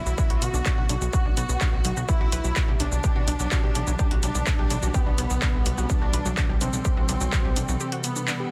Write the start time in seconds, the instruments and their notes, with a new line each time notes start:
Already playing: ambient pad D3 A3 B3 F#4, violin section E4, analog synth lead E4
0.06 analog synth bass B1, synth arpeggio sound F#3, shaker
0.18 synth arpeggio sound F#4, kick, shaker
0.30 analog synth bass B1, synth arpeggio sound F#4, closed hi-hat
0.42 analog synth bass B1, violin section F#4, analog synth lead F#4, closed hi-hat, shaker
0.54 analog synth bass B1, synth arpeggio sound D4, shaker
0.66 synth arpeggio sound D4, kick, clap, shaker
0.77 analog synth bass B1, synth arpeggio sound F#4
0.89 analog synth bass B1, synth arpeggio sound D4, closed hi-hat, shaker
1.01 analog synth bass B1, synth arpeggio sound F#4, shaker
1.13 analog synth lead F#4, violin section F#4, synth arpeggio sound F#4, kick, shaker
1.25 analog synth bass B1, synth arpeggio sound D4
1.37 analog synth bass B1, synth arpeggio sound B3, closed hi-hat, shaker
1.49 analog synth bass B1, synth arpeggio sound B3, shaker
1.61 synth arpeggio sound D4, kick, clap, shaker
1.73 analog synth bass B1
1.85 analog synth bass B1, synth arpeggio sound F#3, closed hi-hat, shaker
1.97 analog synth bass B1, synth arpeggio sound F#4, shaker
2.08 ambient pad C3 E3 G3 G4, synth arpeggio sound B3, analog synth lead E4, violin section E4, kick, shaker
2.20 analog synth bass B1, synth arpeggio sound F#4
2.32 analog synth bass B1, synth arpeggio sound B4, closed hi-hat, shaker
2.44 analog synth bass B1, synth arpeggio sound F#3, shaker
2.56 synth arpeggio sound F#4, kick, clap, shaker
2.68 analog synth bass B1, synth arpeggio sound G4
2.80 analog synth bass B1, analog synth lead D4, violin section D4, synth arpeggio sound D4, closed hi-hat, shaker
2.92 analog synth bass B1, shaker
3.04 synth arpeggio sound G4, kick, shaker
3.16 analog synth bass B1, synth arpeggio sound F#4
3.28 analog synth bass B1, synth arpeggio sound D4, closed hi-hat, shaker
3.40 analog synth bass B1, synth arpeggio sound F#3, shaker
3.51 synth arpeggio sound F#4, kick, clap, shaker
3.63 analog synth bass B1, synth arpeggio sound G4
3.75 analog synth bass B1, synth arpeggio sound D4, closed hi-hat, shaker
3.87 analog synth bass B1, synth arpeggio sound F#3, shaker
3.99 synth arpeggio sound G4, kick, shaker
4.11 analog synth bass B1, synth arpeggio sound F#4, closed hi-hat
4.23 analog synth bass B1, analog synth lead D4, violin section D4, closed hi-hat, shaker
4.35 analog synth bass B1, synth arpeggio sound D4, shaker
4.47 synth arpeggio sound D4, kick, clap, shaker
4.59 analog synth bass B1, synth arpeggio sound G4
4.70 analog synth bass B1, synth arpeggio sound D4, closed hi-hat, shaker
4.83 analog synth bass B1, synth arpeggio sound F#4, shaker
4.94 analog synth lead B3, violin section B3, synth arpeggio sound G4, kick, shaker
5.06 analog synth bass B1, synth arpeggio sound D4
5.18 analog synth bass B1, synth arpeggio sound B3, closed hi-hat, shaker
5.30 analog synth bass B1, synth arpeggio sound B3, shaker
5.42 synth arpeggio sound D4, kick, clap, shaker
5.54 analog synth bass B1
5.66 analog synth bass B1, synth arpeggio sound F#3, closed hi-hat, shaker
5.78 analog synth bass B1, synth arpeggio sound F#4, shaker
5.90 synth arpeggio sound B3, analog synth lead D4, violin section D4, ambient pad A4, kick, shaker
6.02 analog synth bass B1, synth arpeggio sound F#4
6.13 analog synth bass B1, synth arpeggio sound B4, closed hi-hat, shaker
6.25 analog synth bass B1, synth arpeggio sound F#3, shaker
6.37 synth arpeggio sound F#4, kick, clap, shaker
6.49 analog synth bass B1, synth arpeggio sound G4
6.61 analog synth bass B1, analog synth lead C4, violin section C4, synth arpeggio sound D4, closed hi-hat, shaker
6.73 analog synth bass B1, shaker
6.85 synth arpeggio sound G4, kick, shaker
6.97 analog synth bass B1, synth arpeggio sound F#4
7.09 analog synth bass B1, synth arpeggio sound D4, closed hi-hat, shaker
7.21 analog synth bass B1, synth arpeggio sound F#3, shaker
7.33 synth arpeggio sound F#4, kick, clap, shaker
7.45 analog synth bass B1, synth arpeggio sound G4
7.56 analog synth bass B1, synth arpeggio sound D4, closed hi-hat, shaker
7.68 analog synth bass B1, synth arpeggio sound F#3, shaker
7.80 synth arpeggio sound G4, shaker
7.92 synth arpeggio sound F#4, closed hi-hat
8.04 analog synth lead B3, violin section B3, closed hi-hat, shaker
8.16 synth arpeggio sound D4, shaker
8.28 synth arpeggio sound D4, clap, shaker
8.40 synth arpeggio sound G4